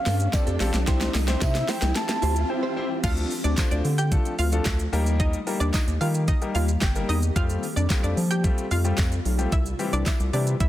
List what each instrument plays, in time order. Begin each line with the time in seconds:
Already playing: ambient pad F3 A3 C4 G4, soft synth lead F5, riser
0.06 analog synth bass G2, clean electric guitar C4 G4 A4, snare, open hi-hat, shaker
0.20 muted clean electric guitar stroke, closed hi-hat, shaker
0.33 grand piano C4 F4 G4 A4, soft synth lead D5, muted clean electric guitar stroke, kick, snare, closed hi-hat, tambourine, shaker
0.47 analog synth bass F2, clean electric guitar C4 G4 A4, closed hi-hat, shaker
0.60 analog synth bass A#1, clean electric guitar C4 G4 A4, grand piano C4 F4 G4 A4, snare, open hi-hat, shaker
0.74 analog synth bass B1, muted clean electric guitar stroke, snare, closed hi-hat, shaker
0.87 analog synth bass C2, ambient pad E3 G3 C4, grand piano C4 E4 G4 C5, clean electric guitar E4 G4 C5, kick, snare, closed hi-hat, shaker
1.01 snare, closed hi-hat, shaker
1.14 analog synth bass C2, snare, open hi-hat, shaker
1.28 grand piano C4 E4 G4 C5, clean electric guitar E4 G4 C5, snare, shaker
1.41 analog synth bass C3, soft synth lead E5, kick, snare, closed hi-hat, tambourine, shaker
1.55 muted clean electric guitar stroke, snare, closed hi-hat, shaker
1.68 clean electric guitar E4 G4 C5, soft synth lead G5, snare, open hi-hat, shaker
1.82 analog synth bass C2, muted clean electric guitar stroke, snare, closed hi-hat, shaker
1.96 soft synth lead A5, snare, closed hi-hat, shaker
2.09 muted clean electric guitar stroke, snare, closed hi-hat, shaker
2.22 analog synth bass D2, clean electric guitar E4 G4 C5, open hi-hat, shaker
2.36 muted clean electric guitar stroke, closed hi-hat, shaker
2.49 grand piano C4 E4 G4 C5, soft synth lead G5, muted clean electric guitar stroke
2.63 clean electric guitar E4 G4 C5
2.76 grand piano C4 E4 G4 C5, clean electric guitar E4 G4 C5
2.90 muted clean electric guitar stroke
3.03 analog synth bass D2, ambient pad D3 F3 A3 F4, grand piano F3 A3 D4 F4 A4, synth pluck F4 F5, kick, closed hi-hat, crash, shaker
3.17 closed hi-hat, shaker
3.31 open hi-hat, shaker
3.44 analog synth bass D2, synth pluck D4 D5, closed hi-hat, shaker
3.57 grand piano F3 A3 D4 F4 C5, kick, snare, clap, closed hi-hat, tambourine, shaker
3.71 analog synth bass D2, synth pluck D4 D5, closed hi-hat, shaker
3.85 analog synth bass D3, open hi-hat, shaker
3.98 synth pluck G4 G5, closed hi-hat, shaker
4.11 grand piano F3 A3 D4 F4 A4, kick, closed hi-hat, shaker
4.25 closed hi-hat, shaker
4.39 analog synth bass D2, synth pluck F4 F5, open hi-hat, shaker
4.52 grand piano F3 A3 D4 F4 A4, closed hi-hat, shaker
4.65 analog synth bass D2, kick, snare, clap, closed hi-hat, tambourine, shaker
4.79 closed hi-hat, shaker
4.92 analog synth bass D#2, ambient pad D#3 G3 A#3 G4, grand piano G3 A#3 D#4 G4 A#4, open hi-hat, shaker
5.06 closed hi-hat, shaker
5.20 synth pluck D#4 D#5, kick, closed hi-hat, shaker
5.33 closed hi-hat, shaker
5.47 grand piano G3 A#3 D#4 G4 A#4, open hi-hat, shaker
5.60 analog synth bass D#2, synth pluck D4 D5, closed hi-hat, shaker
5.74 synth pluck D#4 D#5, kick, snare, clap, closed hi-hat, tambourine, shaker
5.87 analog synth bass D#2, closed hi-hat, shaker
6.01 analog synth bass D#3, grand piano G3 A#3 D#4 G4 A#4, synth pluck F4 F5, open hi-hat, shaker
6.14 closed hi-hat, shaker
6.28 synth pluck D#4 D#5, kick, closed hi-hat, shaker
6.41 grand piano G3 A#3 D#4 G4 A#4, closed hi-hat, shaker
6.55 analog synth bass D#2, synth pluck F4 F5, open hi-hat, shaker
6.68 closed hi-hat, shaker
6.81 analog synth bass G1, synth pluck G4 G5, kick, snare, clap, closed hi-hat, tambourine, shaker
6.95 grand piano G3 A#3 D#4 G4 A#4, closed hi-hat, shaker
7.09 analog synth bass E2, synth pluck D#4 D#5, open hi-hat, shaker
7.23 closed hi-hat, shaker
7.36 analog synth bass F2, ambient pad C3 A3 F4, grand piano G3 A3 C4 F4 G4, synth pluck F4 F5, kick, closed hi-hat, shaker
7.50 closed hi-hat, shaker
7.63 open hi-hat, shaker
7.76 analog synth bass F2, synth pluck D4 D5, closed hi-hat, shaker
7.90 grand piano G3 A3 C4 F4 G4, kick, snare, clap, closed hi-hat, tambourine, shaker
8.03 analog synth bass F2, synth pluck D4 D5, closed hi-hat, shaker
8.17 analog synth bass F3, open hi-hat, shaker
8.31 synth pluck G4 G5, closed hi-hat, shaker
8.44 grand piano G3 A3 C4 F4 G4, kick, closed hi-hat, shaker
8.58 closed hi-hat, shaker
8.71 analog synth bass F2, synth pluck F4 F5, open hi-hat, shaker
8.84 grand piano G3 A3 C4 F4 G4, closed hi-hat, shaker
8.98 analog synth bass F2, kick, snare, clap, closed hi-hat, tambourine, shaker
9.12 closed hi-hat, shaker
9.25 analog synth bass B1, open hi-hat, shaker
9.38 grand piano G3 A3 C4 F4 G4, closed hi-hat, shaker
9.52 analog synth bass C2, ambient pad E3 E4, synth pluck E4 E5, kick, closed hi-hat, shaker
9.66 closed hi-hat, shaker
9.79 grand piano E3 G3 C4 E4 G4, open hi-hat, shaker
9.93 analog synth bass C2, synth pluck D4 D5, closed hi-hat, shaker
10.06 synth pluck E4 E5, kick, snare, clap, closed hi-hat, tambourine, shaker
10.20 analog synth bass C2, closed hi-hat, shaker
10.33 analog synth bass C3, grand piano E3 G3 C4 E4 G4, synth pluck D4 D5, open hi-hat, shaker
10.47 closed hi-hat, shaker
10.60 analog synth bass C2, synth pluck E4 E5, kick, closed hi-hat, shaker